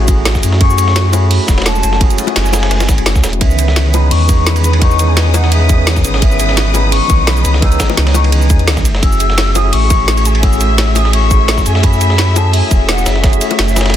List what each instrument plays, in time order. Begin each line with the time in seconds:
Already playing: sub bass A1, string section F#3 F#4, tine electric piano A3 C#4 E4 F#4 G#4
0.05 tine electric piano A3 C#4 E4, kick, closed hi-hat, ride, shaker
0.09 tine electric piano F#4 G#4
0.25 snare, closed hi-hat, ride
0.35 kick, snare, shaker
0.43 sub bass F#2, closed hi-hat, ride, shaker
0.53 snare
0.58 tine electric piano A3 C#4 E4 F#4, flute C#6, kick, closed hi-hat, ride
0.64 tine electric piano G#4
0.70 shaker
0.78 closed hi-hat, ride, shaker
0.88 snare
0.96 snare, closed hi-hat, ride
1.12 tine electric piano A3 C#4 E4 F#4 G#4, flute B5, closed hi-hat, ride, high bongo, shaker
1.31 closed hi-hat, open hi-hat
1.46 sub bass E1, tine electric piano A3 C#4 E4, kick, snare, closed hi-hat, ride, shaker
1.50 tine electric piano G#3 F#4
1.58 snare, ride
1.62 flute A5, snare, ride
1.66 snare, closed hi-hat, ride
1.75 shaker
1.83 sub bass F#1, closed hi-hat, ride, shaker
1.93 snare
1.98 tine electric piano A3 C#4 E4 F#4, flute G#5, kick, closed hi-hat, ride
2.04 tine electric piano G#4
2.10 closed hi-hat, shaker
2.18 closed hi-hat, ride, shaker
2.27 closed hi-hat, high bongo
2.36 sub bass F#1, snare, closed hi-hat, ride
2.46 shaker
2.52 tine electric piano A3 C#4 E4 F#4 G#4, snare, open hi-hat, ride, high bongo, shaker
2.63 snare, ride
2.71 snare, closed hi-hat, ride
2.80 snare, ride, high bongo, shaker
2.89 sub bass G#1, kick, snare, closed hi-hat, ride, shaker
2.98 sub bass F#1, closed hi-hat, ride
3.06 snare, closed hi-hat, ride
3.15 sub bass C#2, kick, snare, shaker
3.24 sub bass E1, snare, closed hi-hat, ride, shaker
3.33 closed hi-hat
3.39 sub bass C#2, string section C#3 B4 D#6, tine electric piano E3 G#3 B3 C#4, flute E5, kick, closed hi-hat, ride
3.44 tine electric piano D#3
3.51 shaker
3.59 closed hi-hat, ride, shaker
3.68 snare
3.76 snare, closed hi-hat, ride
3.93 tine electric piano E3 G#3 B3 C#4 D#4, flute B5, closed hi-hat, ride, high bongo, shaker
4.11 sub bass E2, flute C#6, closed hi-hat, open hi-hat
4.26 tine electric piano E3 G#3 B3, kick, closed hi-hat, ride, shaker
4.31 tine electric piano C#4 D#4
4.46 flute B5, snare, closed hi-hat, ride
4.56 ride, shaker
4.64 closed hi-hat, shaker
4.73 ride
4.79 tine electric piano E3 G#3 B3 C#4, flute C#6, kick, closed hi-hat, ride
4.84 tine electric piano D#4
4.91 shaker
4.99 closed hi-hat, ride, shaker
5.08 flute G#5
5.17 snare, closed hi-hat, ride
5.33 tine electric piano E3 G#3 B3 C#4 D#4, flute F#5, open hi-hat, ride, high bongo, shaker
5.44 snare
5.52 flute E5, closed hi-hat, ride
5.67 tine electric piano E3 G#3 B3, kick, closed hi-hat, ride, shaker
5.71 tine electric piano D#3 C#4
5.87 snare, closed hi-hat, ride
5.96 kick, snare, shaker
6.04 sub bass G#1, closed hi-hat, ride, shaker
6.14 snare
6.19 tine electric piano E3 G#3 B3 C#4, flute E5, kick, closed hi-hat, ride
6.25 tine electric piano D#3
6.31 shaker
6.40 closed hi-hat, ride, shaker
6.49 snare
6.57 snare, closed hi-hat, ride
6.73 tine electric piano E3 G#3 B3 C#4 D#4, flute B5, closed hi-hat, ride, high bongo, shaker
6.92 flute C#6, closed hi-hat, open hi-hat
7.07 sub bass B1, tine electric piano E3 G#3 B3, kick, closed hi-hat, ride, shaker
7.11 tine electric piano C#4 D#4
7.27 flute B5, snare, closed hi-hat, ride
7.37 shaker
7.45 sub bass C#2, closed hi-hat, ride, shaker
7.54 snare
7.60 tine electric piano E3 G#3 B3, flute E6, kick, closed hi-hat, ride
7.64 tine electric piano C#4 D#4
7.72 closed hi-hat, shaker
7.80 kick, snare, closed hi-hat, ride, shaker
7.90 high bongo
7.97 sub bass C#2, snare, closed hi-hat, ride
8.07 snare, ride
8.14 tine electric piano E3 G#3 B3 C#4 D#4, flute C#6, open hi-hat, high bongo, shaker
8.24 ride
8.32 flute G#5, closed hi-hat, ride
8.42 shaker
8.50 sub bass E2, kick, closed hi-hat, ride, shaker
8.59 closed hi-hat
8.68 sub bass C#2, snare, closed hi-hat, ride
8.77 kick, snare, shaker
8.85 sub bass F#1, string section A3 G#4 E5, closed hi-hat, ride, shaker
8.95 snare
9.00 sub bass F#1, tine electric piano A3 C#4 E4, flute E6, kick, closed hi-hat, ride
9.04 tine electric piano F#4 G#4
9.12 shaker
9.20 closed hi-hat, ride, shaker
9.30 snare
9.38 snare, closed hi-hat, ride
9.54 tine electric piano A3 C#4 E4 F#4 G#4, flute D#6, closed hi-hat, ride, high bongo, shaker
9.73 sub bass A1, flute C#6, closed hi-hat, open hi-hat
9.88 tine electric piano A3 C#4 E4, kick, closed hi-hat, ride, shaker
9.92 tine electric piano F#4 G#4
10.08 snare, closed hi-hat, ride
10.17 ride, shaker
10.25 flute G#5, closed hi-hat, shaker
10.35 ride
10.40 tine electric piano A3 C#4 E4, flute E6, kick, closed hi-hat, ride
10.45 tine electric piano F#4 G#4
10.53 shaker
10.61 closed hi-hat, ride, shaker
10.78 snare, closed hi-hat, ride
10.95 tine electric piano A3 C#4 E4 F#4 G#4, flute D#6, open hi-hat, ride, high bongo, shaker
11.05 snare
11.13 flute C#6, closed hi-hat, ride
11.29 tine electric piano A3 C#4 E4, kick, closed hi-hat, ride, shaker
11.33 tine electric piano F#4 G#4
11.48 snare, closed hi-hat, ride
11.58 kick, snare, shaker
11.66 sub bass F#2, flute G#5, closed hi-hat, ride, shaker
11.75 snare
11.81 tine electric piano A3 C#4 E4, flute B5, kick, closed hi-hat, ride
11.85 tine electric piano F#4 G#4
11.93 shaker
12.01 closed hi-hat, ride, shaker
12.10 snare
12.18 snare, closed hi-hat, ride
12.35 tine electric piano A3 C#4 E4 F#4 G#4, flute A5, closed hi-hat, ride, high bongo, shaker
12.53 flute G#5, closed hi-hat, open hi-hat
12.68 sub bass E1, tine electric piano A3 C#4 E4 F#4, kick, closed hi-hat, ride, shaker
12.74 tine electric piano G#4
12.89 flute F#5, snare, closed hi-hat, ride
12.98 shaker
13.06 sub bass F#1, flute E5, snare, closed hi-hat, ride, shaker
13.16 snare
13.21 tine electric piano A3 C#4 E4 F#4, kick, snare, closed hi-hat, ride
13.26 tine electric piano G#4
13.33 closed hi-hat, shaker
13.41 closed hi-hat, ride, shaker
13.51 closed hi-hat, high bongo
13.59 sub bass F#1, snare, closed hi-hat, ride
13.68 shaker
13.75 tine electric piano A3 C#4 E4 F#4 G#4, snare, open hi-hat, ride, high bongo, shaker
13.81 snare, ride
13.86 snare, ride
13.90 snare, ride